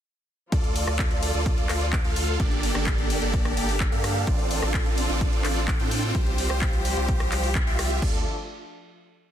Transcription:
0.52 sub bass D2, string section D3 F3 A3 F4, supersaw synth F4 A4 D5, kick, closed hi-hat
0.64 closed hi-hat
0.76 open hi-hat
0.87 sub bass D2, supersaw synth F4 A4 D5, cross-stick, closed hi-hat
0.99 kick, clap, closed hi-hat
1.11 closed hi-hat
1.23 open hi-hat
1.34 sub bass D2, supersaw synth F4 A4 D5, closed hi-hat
1.46 kick, closed hi-hat
1.58 closed hi-hat
1.69 sub bass D2, supersaw synth F4 A4 D5, cross-stick, clap, open hi-hat
1.81 closed hi-hat
1.93 kick, clap, open hi-hat
2.04 sub bass D2, supersaw synth F4 A4 F5, closed hi-hat
2.16 open hi-hat
2.28 closed hi-hat
2.40 sub bass G1, supersaw synth A#3 D4 G4 A4 D5, string section A#3 G4 A4, kick, closed hi-hat
2.52 closed hi-hat
2.63 open hi-hat
2.75 sub bass G1, supersaw synth A#3 D4 G4 A4 D5, cross-stick, closed hi-hat
2.87 kick, clap, closed hi-hat
2.98 closed hi-hat
3.10 open hi-hat
3.22 sub bass G1, supersaw synth A#3 D4 G4 A4 D5, closed hi-hat
3.34 kick, closed hi-hat
3.45 cross-stick, closed hi-hat
3.57 sub bass G1, supersaw synth A#3 D4 G4 A4 D5, open hi-hat
3.69 open hi-hat
3.80 kick, clap, closed hi-hat
3.92 sub bass G2, supersaw synth A#3 D4 G4 A4 F5, closed hi-hat
4.04 cross-stick, open hi-hat
4.16 closed hi-hat
4.27 sub bass A1, supersaw synth C4 D4 F4 A4 D5, string section C4 F4, kick, closed hi-hat
4.39 closed hi-hat
4.51 open hi-hat
4.62 sub bass A1, supersaw synth C4 D4 F4 A4 D5, cross-stick, closed hi-hat
4.74 kick, clap, closed hi-hat
4.86 closed hi-hat
4.98 open hi-hat
5.09 sub bass A1, supersaw synth C4 D4 F4 A4 D5, closed hi-hat
5.21 kick, closed hi-hat
5.33 closed hi-hat
5.44 sub bass A1, supersaw synth C4 D4 F4 A4 D5, cross-stick, clap, open hi-hat
5.56 closed hi-hat
5.68 kick, clap, open hi-hat
5.79 sub bass A2, supersaw synth C4 D4 F4 A4 G5, closed hi-hat
5.91 open hi-hat
6.03 closed hi-hat
6.15 sub bass C2, string section F3 G3 G4, supersaw synth F4 G4 C5, kick, closed hi-hat
6.27 closed hi-hat
6.38 open hi-hat
6.50 sub bass C2, supersaw synth F4 G4 C5, cross-stick
6.61 kick, clap, closed hi-hat
6.73 closed hi-hat
6.85 open hi-hat
6.97 sub bass C2, supersaw synth F4 G4 C5, closed hi-hat
7.08 kick, closed hi-hat
7.20 cross-stick, closed hi-hat
7.32 sub bass C2, supersaw synth F4 G4 C5, clap, open hi-hat
7.44 open hi-hat
7.55 kick, clap
7.67 sub bass C2, supersaw synth F4 G4 E5, closed hi-hat
7.79 cross-stick, open hi-hat
7.91 closed hi-hat
8.02 sub bass D2, string section F3 A3 D4 A4, supersaw synth F4 A4 D5, kick, crash

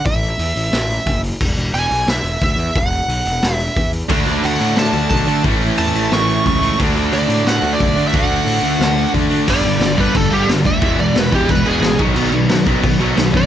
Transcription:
0.06 picked electric bass A1, lead electric guitar E5, kick, open hi-hat
0.23 open hi-hat
0.39 picked electric bass E2, open hi-hat
0.56 picked electric bass A1, open hi-hat
0.72 picked electric bass A1, snare, open hi-hat
0.90 open hi-hat
1.06 picked electric bass F#1, kick, open hi-hat
1.24 open hi-hat
1.41 picked electric bass E1, kick, crash
1.57 picked electric bass E1, open hi-hat
1.74 picked electric bass E1, lead electric guitar G#5, open hi-hat
1.91 picked electric bass B1, open hi-hat
2.07 picked electric bass B1, lead electric guitar E5, snare, open hi-hat
2.23 picked electric bass E1, open hi-hat
2.41 picked electric bass D2, lead electric guitar E5, kick, open hi-hat
2.57 picked electric bass E2, open hi-hat
2.75 picked electric bass E1, lead electric guitar F#5, kick, open hi-hat
2.92 open hi-hat
3.08 picked electric bass B1, open hi-hat
3.25 picked electric bass E1, open hi-hat
3.43 picked electric bass E1, snare, open hi-hat
3.55 lead electric guitar E5
3.60 open hi-hat
3.76 picked electric bass E2, kick, open hi-hat
3.93 open hi-hat
4.09 picked electric bass D2, distorted electric guitar D3 A3 D4 F#4, kick, crash
4.26 picked electric bass D2, open hi-hat
4.43 picked electric bass D2, lead electric guitar F#5, open hi-hat
4.59 picked electric bass A2, distorted electric guitar D3 A3 D4, open hi-hat
4.76 picked electric bass A2, lead electric guitar A5, snare, open hi-hat
4.93 picked electric bass D2, open hi-hat
5.10 picked electric bass B1, lead electric guitar A5, kick, open hi-hat
5.27 picked electric bass D3, distorted electric guitar D3 A3 D4, open hi-hat
5.43 picked electric bass A1, distorted electric guitar A2 E3 A3 C#4 E4, kick, open hi-hat
5.61 open hi-hat
5.78 picked electric bass E2, lead electric guitar A5, open hi-hat
5.94 picked electric bass A1, distorted electric guitar A2 E3 A3, open hi-hat
6.12 picked electric bass A1, lead electric guitar C#6, snare, open hi-hat
6.29 open hi-hat
6.46 picked electric bass C#2, lead electric guitar C#6, kick, open hi-hat
6.62 distorted electric guitar A2 E3 A3, open hi-hat
6.78 picked electric bass D2, distorted electric guitar D3 A3 D4 F#4, kick, crash
6.96 picked electric bass D2, open hi-hat
7.13 picked electric bass D2, lead electric guitar D5, open hi-hat
7.28 picked electric bass A2, distorted electric guitar D3 A3 D4, open hi-hat
7.45 picked electric bass A2, lead electric guitar F#5, snare, open hi-hat
7.62 picked electric bass D2, open hi-hat
7.73 lead electric guitar D5
7.80 picked electric bass B1, kick, open hi-hat
7.96 picked electric bass D3, distorted electric guitar D3 A3 D4, open hi-hat
8.07 lead electric guitar E5
8.13 picked electric bass D2, distorted electric guitar D3 A3 D4 F#4, lead electric guitar F#5, kick, open hi-hat
8.31 open hi-hat
8.46 picked electric bass A2, open hi-hat
8.62 picked electric bass D2, distorted electric guitar A3 D4, open hi-hat
8.66 distorted electric guitar D3
8.79 picked electric bass D2, snare, open hi-hat
8.98 open hi-hat
9.14 picked electric bass D3, kick, open hi-hat
9.30 distorted electric guitar D3 A3 D4, open hi-hat
9.48 picked electric bass G1, distorted electric guitar G2 D3 G3, lead electric guitar D5, kick, crash
9.63 picked electric bass G1, distorted electric guitar G2 D3 G3, crash
9.79 picked electric bass G1, distorted electric guitar G2 D3 G3, snare, crash
9.97 picked electric bass G1, distorted electric guitar G2 D3 G3, lead electric guitar B4, kick, crash
10.14 picked electric bass G1, distorted electric guitar G2 D3 G3, lead electric guitar A4, kick, crash
10.30 picked electric bass G1, distorted electric guitar G2 D3 G3, lead electric guitar G4, crash
10.47 picked electric bass G1, distorted electric guitar G2 D3 G3, snare, crash
10.64 picked electric bass D2, distorted electric guitar G2 D3 G3, lead electric guitar E5, kick, crash
10.81 picked electric bass E1, distorted electric guitar E2 B2 E3 G#3 B3, kick, crash
10.98 picked electric bass E1, distorted electric guitar E2 B2 E3 G#3, lead electric guitar D5, crash
11.14 picked electric bass E1, distorted electric guitar E2 B2 E3 G#3, snare, crash
11.19 lead electric guitar B4
11.31 picked electric bass E1, distorted electric guitar E2 B2 E3 G#3 B3, lead electric guitar G4, kick, crash
11.48 picked electric bass E1, distorted electric guitar E2 B2 E3 G#3, lead electric guitar B4, kick, crash
11.64 picked electric bass E1, distorted electric guitar E2 B2 E3 G#3 B3, lead electric guitar G#4, crash
11.80 picked electric bass A1, distorted electric guitar E2 B2 E3 G#3, snare, crash
11.99 picked electric bass B1, distorted electric guitar B2 D#3 F#3 B3, kick, crash
12.14 picked electric bass B1, distorted electric guitar B2 D#3 F#3 B3, crash
12.31 picked electric bass B1, distorted electric guitar B2 D#3 F#3 B3, crash
12.48 picked electric bass B1, distorted electric guitar B2 D#3 F#3 B3, snare, crash
12.66 picked electric bass B1, distorted electric guitar B2 D#3 F#3 B3, kick, crash
12.82 picked electric bass B1, distorted electric guitar B2 D#3 F#3 B3, kick, crash
12.98 picked electric bass B1, distorted electric guitar B2 D#3 F#3 B3, crash
13.15 picked electric bass B1, distorted electric guitar B2 D#3 F#3 B3, snare, crash
13.31 picked electric bass F#2, distorted electric guitar B2 D#3 F#3 B3, kick, crash
13.37 lead electric guitar D5

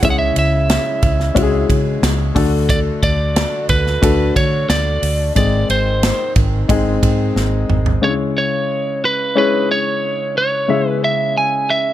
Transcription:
Already playing: woodwind section C#3 G#3 E4, upright piano G#3 C#4 E4 G#4
0.02 fingered electric bass C#2, upright piano C#3 G#3 C#4 E4 G#4, lead electric guitar E5, kick, hi-hat pedal, ride
0.10 lead electric guitar F#5
0.19 lead electric guitar E5
0.36 fingered electric bass C#2, lead electric guitar E5, ride
0.70 snare, ride
1.03 fingered electric bass C#2, kick, ride
1.20 snare
1.35 fingered electric bass C#2, upright piano G#3 C#4 E4 F#4, kick, ride
1.43 upright piano G#4
1.70 fingered electric bass C#3, kick, ride
2.02 fingered electric bass C#2, snare, ride
2.35 fingered electric bass D2, woodwind section D3 A3 F#4, upright piano D3 A3 D4 F#4 A4, kick, open hi-hat, ride
2.69 lead electric guitar D5, kick, hi-hat pedal, ride
3.03 fingered electric bass D2, lead electric guitar D5, kick, ride
3.36 snare, ride
3.69 fingered electric bass D2, lead electric guitar B4, kick, ride
3.87 snare
4.02 fingered electric bass D2, upright piano A3 D4 F#4 A4, kick, ride
4.36 fingered electric bass D3, lead electric guitar C#5, kick, ride
4.70 fingered electric bass D2, lead electric guitar D5, snare, ride
5.02 fingered electric bass D2, open hi-hat, ride
5.35 fingered electric bass G#1, upright piano G#2 G#3 C4 D#4 G#4, woodwind section D#3 G#3 C4, lead electric guitar D5, kick, hi-hat pedal, ride
5.69 fingered electric bass G#1, lead electric guitar C5, ride
6.03 snare, ride
6.36 fingered electric bass G#1, kick, ride
6.69 fingered electric bass G#1, upright piano G#3 C4 D#4 G#4, kick, ride
7.03 fingered electric bass G#2, kick, ride
7.36 fingered electric bass G#1, snare
7.69 fingered electric bass G#1, mid tom
7.86 floor tom
8.02 upright piano C#3 G#3 C#4 D4 G#4 C#5, lead electric guitar C#5
8.09 upright piano E4
8.38 lead electric guitar C#5
9.05 lead electric guitar B4
9.35 upright piano G#3 C#4 E4 G#4 C#5, lead electric guitar B4
9.71 lead electric guitar C#5
10.38 lead electric guitar C#5
10.68 upright piano C#3 G#3 C#4 E4 G#4 E5
10.89 lead electric guitar B4
11.04 lead electric guitar E5
11.38 lead electric guitar G#5
11.70 lead electric guitar E5

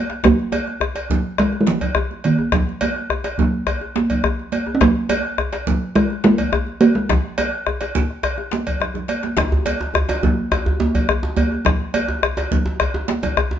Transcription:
0.10 djembe slap
0.24 talking drum A#3, bombo rim, bombo low, djembe slap, djembe bass, low conga
0.38 djembe slap, high conga
0.52 cowbell, djembe tone, high conga
0.67 bombo rim, high conga
0.81 bombo rim, djembe bass
0.95 cowbell, djembe slap, djembe tone
1.10 bombo low, djembe slap, high conga, low conga
1.24 djembe slap
1.38 talking drum G#3, bombo rim, cowbell, djembe slap, djembe bass
1.53 djembe slap, djembe tone
1.61 talking drum G#3
1.67 talking drum F3, djembe slap, high conga
1.81 bombo low, cowbell, low conga
1.95 bombo rim, djembe tone, djembe bass
2.11 high conga
2.24 talking drum D#3, cowbell, high conga
2.38 djembe tone
2.52 bombo rim, bombo low, djembe slap, djembe bass, low conga
2.67 djembe slap, high conga
2.81 cowbell, djembe tone, high conga
2.96 bombo rim, high conga
3.10 bombo rim, djembe bass
3.24 cowbell, djembe slap, djembe tone
3.38 bombo low, djembe slap, high conga, low conga
3.53 djembe slap
3.67 bombo rim, cowbell, djembe slap, djembe bass
3.81 djembe slap, djembe tone
3.96 djembe slap, high conga
4.10 bombo low, cowbell, low conga
4.24 bombo rim, djembe tone, djembe bass
4.39 high conga
4.52 cowbell, high conga
4.67 djembe tone
4.75 talking drum C#4
4.81 talking drum A#3, bombo rim, bombo low, djembe slap, low conga, djembe bass
4.96 djembe slap, high conga
5.09 cowbell, djembe tone, high conga
5.25 bombo rim
5.38 bombo rim, djembe bass
5.53 cowbell, djembe slap, djembe tone
5.67 bombo low, djembe slap, high conga, low conga
5.82 djembe slap
5.95 talking drum G#3, bombo rim, cowbell, djembe slap, djembe bass
6.10 djembe slap, djembe tone
6.24 talking drum G#3, djembe slap, high conga
6.38 bombo low, cowbell, low conga
6.53 bombo rim, djembe tone, djembe bass
6.67 high conga
6.81 talking drum A#3, cowbell, high conga
6.95 talking drum G#3, djembe tone
7.09 bombo rim, bombo low, djembe slap, high conga, djembe bass, low conga
7.25 bombo rim
7.38 cowbell, high conga, djembe tone
7.53 djembe slap
7.67 bombo rim, djembe bass
7.81 cowbell, djembe slap, djembe tone
7.95 bombo low, djembe slap, high conga, low conga
8.10 bombo rim
8.23 bombo rim, cowbell, djembe slap, djembe bass
8.38 djembe tone
8.51 bombo rim, djembe slap, high conga
8.66 bombo low, cowbell, djembe bass, low conga
8.80 bombo rim, djembe bass, low conga
8.94 bombo rim, djembe bass, low conga
9.08 cowbell, djembe slap, high conga
9.23 bombo rim, djembe slap, high conga
9.37 bombo rim, bombo low, djembe slap, djembe tone, djembe bass, low conga
9.52 djembe slap, high conga, djembe bass
9.65 cowbell, djembe tone, high conga
9.81 bombo rim, djembe tone, high conga
9.94 bombo rim, djembe bass
10.09 cowbell, djembe slap, djembe tone
10.23 bombo low, high conga, djembe bass, low conga
10.38 djembe slap
10.52 bombo rim, cowbell, djembe slap, djembe tone, djembe bass
10.66 djembe slap, djembe tone, djembe bass
10.80 djembe tone, high conga
10.95 bombo low, cowbell, djembe bass, low conga
11.09 bombo rim, djembe tone, djembe bass
11.23 djembe tone, high conga
11.36 cowbell, high conga, djembe bass
11.52 djembe tone
11.65 bombo rim, bombo low, djembe slap, low conga, djembe bass
11.80 djembe slap, high conga
11.94 cowbell, high conga, djembe tone
12.08 bombo rim, djembe tone
12.23 bombo rim, djembe bass
12.37 cowbell, djembe slap, djembe tone
12.51 bombo low, djembe slap, high conga, low conga
12.66 djembe slap, djembe tone
12.80 bombo rim, cowbell, djembe slap, djembe bass
12.94 djembe slap, djembe tone
13.08 djembe slap, high conga
13.23 bombo low, cowbell, djembe tone, low conga
13.37 bombo rim, djembe tone, djembe bass
13.51 djembe tone, high conga

